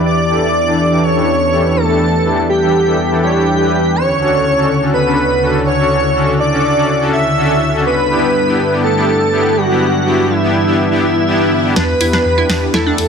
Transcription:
Already playing: analog synth pad E2 D4 G4
0.06 analog synth pad E3 B3, analog synth lead D5, digital synth lead D5
0.30 supersaw synth E3 D4 E4 G4 A4
0.67 supersaw synth E3 D4 E4 G4 A4
0.91 supersaw synth E3 D4 E4 G4 A4
1.03 digital synth lead C#5, analog synth lead C#5
1.16 supersaw synth E3 D4 E4 G4 A4
1.52 supersaw synth E3 D4 E4 G4 A4
1.76 digital synth lead A4, analog synth lead A4
1.89 supersaw synth E3 D4 E4 G4 A4
2.01 analog synth pad F#5
2.25 supersaw synth E3 D4 E4 G4 A4
2.49 analog synth lead G4, digital synth lead G4
2.62 supersaw synth E3 D4 E4 G4 A4
2.87 supersaw synth E3 D4 E4 G4 A4
3.11 supersaw synth E3 D4 E4 G4 A4
3.23 supersaw synth E3 D4 E4 G4 C#5, digital synth lead G4, analog synth lead G4
3.35 supersaw synth E3 D4 E4 G4 A4
3.60 supersaw synth E3 D4 E4 G4 B4
3.96 analog synth pad D2 C#3 D3 E4, digital synth lead C#5, analog synth lead C#5
4.20 supersaw synth C#4 D4 F#4 A4
4.57 supersaw synth C#4 D4 F#4 A4
4.82 supersaw synth C#4 D4 F#4 A4
4.93 analog synth lead B4, digital synth lead B4
5.06 supersaw synth C#4 D4 F#4 A4
5.42 supersaw synth C#4 D4 F#4 A4
5.67 analog synth lead C#5, digital synth lead C#5
5.79 supersaw synth C#4 D4 F#4 A4
6.15 supersaw synth C#4 D4 F#4 A4
6.40 digital synth lead D5, analog synth lead D5
6.52 supersaw synth C#4 D4 F#4 A4
6.77 supersaw synth C#4 D4 F#4 A4
7.01 supersaw synth C#4 D4 F#4 A4
7.13 analog synth lead E5, digital synth lead E5
7.37 supersaw synth C#4 D4 F#4 A4
7.74 supersaw synth C#4 D4 F#4 A4
7.86 analog synth pad G2 B3 A4, digital synth lead B4, analog synth lead B4
8.10 supersaw synth B3 D4 E4 G4
8.48 supersaw synth B3 D4 E4 G4
8.72 supersaw synth B3 D4 E4 G4
8.84 analog synth lead A4, digital synth lead A4
8.96 supersaw synth B3 D4 E4 G4
9.32 supersaw synth B3 D4 E4 G4
9.57 digital synth lead F#4, analog synth lead F#4
9.70 supersaw synth B3 D4 E4 G4
9.81 analog synth pad B4
10.06 supersaw synth B3 D4 E4 G4
10.30 analog synth lead E4, digital synth lead E4
10.43 supersaw synth B3 D4 E4 G4
10.67 supersaw synth B3 D4 E4 G4
10.79 swell
10.91 supersaw synth B3 D4 E4 G4
11.03 analog synth lead E4, digital synth lead E4
11.27 supersaw synth B3 D4 E4 G4
11.65 supersaw synth B3 D4 E4 G4
11.76 detuned saw bass E2, analog synth pad E3 B3 D4 F#4 G4, synth arpeggio sound D4, analog synth lead B4, digital synth lead B4, snare
12.01 detuned saw bass E2, supersaw synth B3 D4 E4 G4, synth arpeggio sound E4, open hi-hat
12.13 synth arpeggio sound D4, snare
12.25 detuned saw bass E2
12.38 supersaw synth B3 D4 E4 G4, synth arpeggio sound E4
12.49 detuned saw bass E2, synth arpeggio sound D4, snare, open hi-hat
12.62 supersaw synth B3 D4 E4 G4
12.74 detuned saw bass E2, synth arpeggio sound E4, digital synth lead A4, analog synth lead A4, snare
12.86 supersaw synth B3 D4 E4 G4, synth arpeggio sound D4
12.98 detuned saw bass E2, open hi-hat

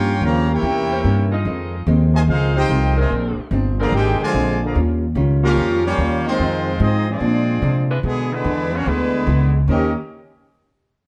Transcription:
Already playing: upright bass G2, hollow-body jazz guitar F3 A#3 C#4, trombone section A#3 C#4 G4, trumpet section F4 A#4 C#5 G5
0.21 upright bass D#2, hollow-body jazz guitar G2 F3 A#3 C#4, trombone section C#3 F3 A#3
0.25 trumpet section G4 C#5 F5 A#5
0.51 trombone section A#3 E4 G4, trumpet section E4 A#4 C#5 G5
0.62 upright bass E2, hollow-body jazz guitar C3 E3 A#3 C#4
0.91 saxophone section A#3 C#4 E4 C5
1.04 upright bass G2, hollow-body jazz guitar C3 E3 A#3 C#4
1.31 saxophone section G#3 D#4 F4 D#5
1.45 upright bass F2, hollow-body jazz guitar F2 D#3 G#3 C4
1.87 upright bass D#2, hollow-body jazz guitar F2 D#3 G#3 C4
2.14 trombone section C3 D#3 G#3, trumpet section F4 C5 D#5 G#5
2.27 upright bass C#2, hollow-body jazz guitar F2 D#3 G#3 C4, trombone section G#3 C4 F4, trumpet section D#4 G#4 C5 F5
2.55 saxophone section G#3 D#4 F4 C5, trombone section C4 D#4 G4, trumpet section F4 C5 D#5 G5
2.69 upright bass C2, hollow-body jazz guitar F2 D#3 G#3 C4
2.97 trombone section C3 D#3 G#3, saxophone section G#3 C4 D4 A#4, trumpet section F4 C5 D#5 G#5
3.10 upright bass A#1, hollow-body jazz guitar A#2 G#3 C4 D4
3.37 muted upright bass stroke
3.51 upright bass G1, hollow-body jazz guitar A#2 G#3 C4 D4
3.78 trombone section D3 F3 A#3, saxophone section G#3 C4 D4 A#4, trumpet section G#4 D5 F5 A#5
3.92 upright bass G#1, hollow-body jazz guitar A#2 G#3 C4 D4, trumpet section D#4 G#4 C5 G5, trombone section G4
4.20 trombone section D3 F3 G#3, trumpet section C5 D5 G#5, muted upright bass stroke
4.24 trumpet section F4
4.33 upright bass A#1, hollow-body jazz guitar A#2 G#3 C4 D4
4.63 trombone section D3 F3 A#3, trumpet section G#4 D5 F5 A#5
4.75 upright bass D#2, hollow-body jazz guitar D#3 G3 C#4 F4
5.15 upright bass C#2, hollow-body jazz guitar D#3 G3 C#4 F4
5.43 saxophone section F3 C#4 D#4 G4, trombone section A#3 C#4 F4, trumpet section C#4 G4 A#4 F5
5.57 upright bass F2, hollow-body jazz guitar D#3 G3 C#4 F4
5.85 trombone section G3 A#3 C#4, trumpet section A#3 F4 G4 C#5
5.98 upright bass D#2, hollow-body jazz guitar D#3 G3 C#4 F4
6.26 trombone section D#3 G#3 C4, trumpet section G#3 D#4 F4 C5
6.39 upright bass F2, saxophone section F3 C4 D#4 G#4, hollow-body jazz guitar F3 C4 D#4 G#4
6.80 upright bass G#2, hollow-body jazz guitar F3 C4 D#4 G#4, trombone section G#3 C4 D#4, trumpet section C4 F4 G#4 D#5
7.09 trombone section F3 G#3 D4, trumpet section C4 F4 G#4 D5
7.20 upright bass A#2, hollow-body jazz guitar A#2 G#3 C4 D4
7.62 hollow-body jazz guitar A#2 G#3 C4 D4, upright bass C3
7.89 saxophone section G#3 D4 E4 B4
8.03 upright bass B2, trombone section B2 D3 G#3, hollow-body jazz guitar E3 B3 D4 G#4, trumpet section B3 D4 G#4
8.32 trombone section D3 G#3 B3, trumpet section G#3 D4 E4 B4
8.44 upright bass E2, hollow-body jazz guitar E3 B3 D4 G#4
8.74 trumpet section A#3 D4 F#4 C#5, trombone section C#4
8.86 upright bass D2, trombone section D3 G#3 B3, hollow-body jazz guitar E3 B3 D4 G#4, trumpet section G#3 D4 E4 B4
9.27 upright bass C#2, hollow-body jazz guitar E3 B3 D4 G#4
9.68 upright bass D#2, hollow-body jazz guitar D#3 C#4 G4 C5, trombone section D#3 A#3 C#4 G4, trumpet section C#4 G4 A#4 D#5

